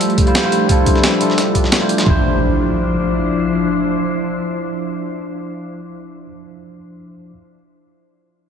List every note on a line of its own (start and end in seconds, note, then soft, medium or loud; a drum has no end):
0.00 2.02 F3 medium
0.00 0.26 G3 medium
0.00 2.03 A3 medium
0.00 2.04 D4 medium
0.00 0.26 E4 medium
0.00 0.27 F4 medium
0.00 2.02 G4 medium
0.00 0.72 A4 medium
0.00 0.28 C5 medium
0.00 closed hi-hat medium
0.10 closed hi-hat soft
0.18 kick loud
0.18 closed hi-hat medium
0.26 0.41 G3 medium
0.26 0.42 E4 medium
0.26 0.42 F4 medium
0.26 0.42 C5 medium
0.26 closed hi-hat soft
0.35 snare loud
0.35 closed hi-hat medium
0.43 0.58 G3 medium
0.43 0.59 E4 medium
0.43 0.59 F4 medium
0.43 0.60 C5 medium
0.52 closed hi-hat medium
0.67 1.18 G3 medium
0.67 1.18 E4 medium
0.67 1.19 F4 medium
0.67 kick loud
0.67 closed hi-hat medium
0.72 1.20 A4 medium
0.86 kick medium
0.86 closed hi-hat medium
0.96 snare soft
1.03 snare loud
1.03 closed hi-hat medium
1.20 1.53 G3 medium
1.20 1.53 E4 medium
1.20 1.54 F4 medium
1.20 1.54 A4 medium
1.20 closed hi-hat medium
1.30 snare soft
1.38 snare medium
1.38 closed hi-hat medium
1.54 1.78 G3 medium
1.54 1.79 E4 medium
1.54 1.79 F4 medium
1.54 1.80 G4 medium
1.54 kick medium
1.54 closed hi-hat medium
1.64 snare soft
1.72 snare loud
1.72 closed hi-hat medium
1.80 2.04 G3 medium
1.80 2.04 E4 medium
1.80 2.05 F4 medium
1.80 2.05 C5 medium
1.89 closed hi-hat medium
1.98 snare loud
1.98 closed hi-hat medium
2.03 6.25 F3 medium
2.03 5.57 F3 medium
2.03 6.26 D4 medium
2.03 5.57 D4 medium
2.03 5.57 E4 medium
2.03 5.57 C5 medium
2.03 kick loud
2.03 impact medium
2.08 6.27 E4 medium
2.08 6.28 C5 medium